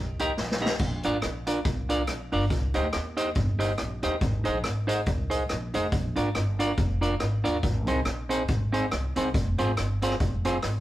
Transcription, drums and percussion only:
0.19 closed hi-hat
0.37 snare
0.52 snare
0.66 snare
0.79 kick, splash
1.03 closed hi-hat
1.22 cross-stick, closed hi-hat
1.47 closed hi-hat
1.65 kick, closed hi-hat
1.89 closed hi-hat
2.07 cross-stick, closed hi-hat
2.32 open hi-hat
2.50 kick, closed hi-hat
2.74 closed hi-hat
2.93 cross-stick, closed hi-hat
3.17 closed hi-hat
3.35 kick, closed hi-hat
3.60 closed hi-hat
3.78 cross-stick, closed hi-hat
4.03 closed hi-hat
4.21 kick, closed hi-hat
4.45 closed hi-hat
4.63 cross-stick, closed hi-hat
4.89 closed hi-hat
5.06 kick, closed hi-hat
5.31 closed hi-hat
5.49 cross-stick, closed hi-hat
5.74 closed hi-hat
5.92 kick, closed hi-hat
6.16 closed hi-hat
6.35 cross-stick, closed hi-hat
6.60 closed hi-hat
6.77 kick, closed hi-hat
7.03 closed hi-hat
7.20 cross-stick, closed hi-hat
7.45 closed hi-hat
7.63 kick, closed hi-hat
7.87 closed hi-hat
8.05 cross-stick, closed hi-hat
8.30 closed hi-hat
8.48 kick, closed hi-hat
8.74 closed hi-hat
8.91 cross-stick, closed hi-hat
9.16 closed hi-hat
9.34 kick, closed hi-hat
9.58 closed hi-hat
9.77 cross-stick, closed hi-hat
10.02 closed hi-hat
10.10 cross-stick
10.20 kick, closed hi-hat
10.45 closed hi-hat
10.62 cross-stick, closed hi-hat

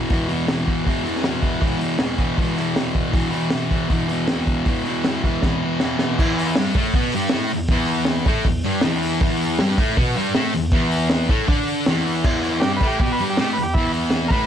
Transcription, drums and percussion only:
0.10 kick, open hi-hat
0.29 open hi-hat
0.48 snare, open hi-hat
0.68 kick, open hi-hat
0.87 kick, open hi-hat
1.07 open hi-hat
1.16 snare
1.24 snare, open hi-hat
1.43 kick, open hi-hat
1.62 kick, open hi-hat
1.81 open hi-hat
1.99 snare, open hi-hat
2.18 kick, open hi-hat
2.38 kick, open hi-hat
2.58 open hi-hat
2.76 snare, open hi-hat
2.95 kick, open hi-hat
3.13 kick, open hi-hat
3.33 open hi-hat
3.50 snare, open hi-hat
3.71 kick, open hi-hat
3.90 kick, open hi-hat
4.09 open hi-hat
4.28 snare, open hi-hat
4.47 kick, open hi-hat
4.66 kick, open hi-hat
4.86 open hi-hat
5.04 snare, open hi-hat
5.24 kick, open hi-hat
5.42 kick, snare
5.80 snare
5.99 snare
6.19 kick, crash
6.39 open hi-hat
6.55 snare, open hi-hat
6.75 kick, open hi-hat
6.94 kick, open hi-hat
7.12 open hi-hat
7.29 snare, open hi-hat
7.48 open hi-hat
7.68 kick, open hi-hat
7.87 open hi-hat
8.05 snare
8.26 kick, open hi-hat
8.44 kick, open hi-hat
8.63 open hi-hat
8.81 snare, open hi-hat
9.03 open hi-hat
9.21 kick, open hi-hat
9.41 open hi-hat
9.59 snare, open hi-hat
9.78 kick, open hi-hat
9.97 kick, open hi-hat
10.17 open hi-hat
10.35 snare, open hi-hat
10.53 open hi-hat
10.71 kick, open hi-hat
10.91 open hi-hat
11.10 snare, open hi-hat
11.29 kick, open hi-hat
11.48 kick, open hi-hat
11.68 open hi-hat
11.86 snare, open hi-hat
12.08 open hi-hat
12.24 kick, crash
12.44 open hi-hat
12.62 snare, open hi-hat
12.81 kick, open hi-hat
12.99 kick, open hi-hat
13.18 open hi-hat
13.37 snare, open hi-hat
13.58 open hi-hat
13.75 kick, open hi-hat
13.93 open hi-hat
14.10 snare, open hi-hat
14.30 kick, open hi-hat

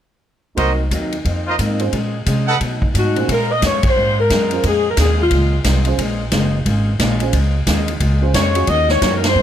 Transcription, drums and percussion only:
0.57 kick, ride
0.91 kick, hi-hat pedal, ride
1.12 ride
1.25 kick, ride
1.59 kick, hi-hat pedal, ride
1.79 ride
1.93 kick, ride
2.26 kick, hi-hat pedal, ride
2.61 kick, ride
2.82 kick
2.95 kick, hi-hat pedal, ride
3.16 ride
3.28 kick, ride
3.62 kick, snare, hi-hat pedal, ride
3.83 kick, ride
4.30 kick, snare, hi-hat pedal, ride
4.51 ride
4.63 kick, ride
4.97 kick, snare, hi-hat pedal, ride
5.31 kick, ride
5.64 kick, snare, hi-hat pedal, ride
5.85 ride
5.98 kick, ride
6.32 kick, snare, hi-hat pedal, ride
6.66 kick, ride
6.99 kick, snare, hi-hat pedal, ride
7.20 ride
7.33 kick, ride
7.67 kick, snare, hi-hat pedal, ride
7.88 ride
8.00 kick, ride
8.34 kick, snare, hi-hat pedal, ride
8.55 ride
8.67 kick, ride
8.89 snare
9.02 kick, snare, hi-hat pedal, ride
9.24 snare, ride

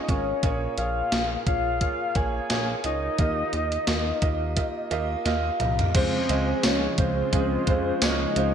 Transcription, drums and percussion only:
0.09 kick, closed hi-hat
0.43 kick, closed hi-hat
0.78 closed hi-hat
1.12 snare, closed hi-hat
1.47 kick, closed hi-hat
1.81 kick, closed hi-hat
2.15 kick, closed hi-hat
2.50 snare, closed hi-hat
2.84 closed hi-hat
3.18 kick, closed hi-hat
3.53 closed hi-hat
3.72 closed hi-hat
3.87 snare, closed hi-hat
4.22 kick, closed hi-hat
4.57 kick, closed hi-hat
4.91 closed hi-hat
5.26 snare, closed hi-hat
5.60 closed hi-hat, mid tom
5.79 closed hi-hat, floor tom
5.95 kick, closed hi-hat, crash
6.29 closed hi-hat
6.63 snare, closed hi-hat, tambourine
6.98 kick, closed hi-hat
7.33 kick, closed hi-hat
7.67 kick, closed hi-hat
8.02 snare, closed hi-hat, tambourine
8.36 closed hi-hat

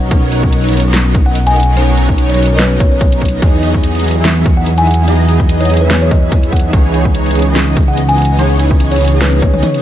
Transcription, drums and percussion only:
0.11 kick, closed hi-hat
0.32 closed hi-hat
0.43 kick
0.52 closed hi-hat
0.64 closed hi-hat
0.69 closed hi-hat
0.73 closed hi-hat
0.77 closed hi-hat
0.80 closed hi-hat
0.94 snare, closed hi-hat
1.14 kick, closed hi-hat
1.35 closed hi-hat
1.47 closed hi-hat
1.56 closed hi-hat
1.60 closed hi-hat
1.63 closed hi-hat
1.77 closed hi-hat
1.97 closed hi-hat
2.09 kick
2.18 closed hi-hat
2.29 closed hi-hat
2.34 closed hi-hat
2.39 closed hi-hat
2.43 closed hi-hat
2.46 closed hi-hat
2.59 snare, closed hi-hat
2.80 kick, closed hi-hat
3.01 kick, closed hi-hat
3.12 closed hi-hat
3.21 kick, closed hi-hat
3.25 closed hi-hat
3.28 closed hi-hat
3.42 kick, closed hi-hat
3.63 closed hi-hat
3.74 kick
3.83 closed hi-hat
3.95 closed hi-hat
3.99 closed hi-hat
4.04 closed hi-hat
4.08 closed hi-hat
4.11 closed hi-hat
4.25 snare, closed hi-hat
4.46 kick, closed hi-hat
4.66 closed hi-hat
4.78 closed hi-hat
4.87 closed hi-hat
4.91 closed hi-hat
4.94 closed hi-hat
5.08 closed hi-hat
5.28 closed hi-hat
5.40 kick
5.49 closed hi-hat
5.61 closed hi-hat
5.65 closed hi-hat
5.70 closed hi-hat
5.74 closed hi-hat
5.77 closed hi-hat
5.91 snare, closed hi-hat
6.11 kick, closed hi-hat
6.32 kick, closed hi-hat
6.43 closed hi-hat
6.52 kick, closed hi-hat
6.56 closed hi-hat
6.59 closed hi-hat
6.73 kick, closed hi-hat
6.94 closed hi-hat
7.05 kick
7.15 closed hi-hat
7.26 closed hi-hat
7.31 closed hi-hat
7.35 closed hi-hat
7.39 closed hi-hat
7.42 closed hi-hat
7.56 snare, closed hi-hat
7.77 kick, closed hi-hat
7.97 closed hi-hat
8.09 closed hi-hat
8.18 closed hi-hat
8.22 closed hi-hat
8.25 closed hi-hat
8.39 closed hi-hat
8.59 closed hi-hat
8.71 kick
8.80 closed hi-hat
8.91 closed hi-hat
8.96 closed hi-hat
9.01 closed hi-hat
9.05 closed hi-hat
9.08 closed hi-hat
9.21 snare, closed hi-hat, high tom
9.33 high tom
9.42 kick, closed hi-hat, high tom
9.54 mid tom
9.63 closed hi-hat, mid tom
9.74 closed hi-hat

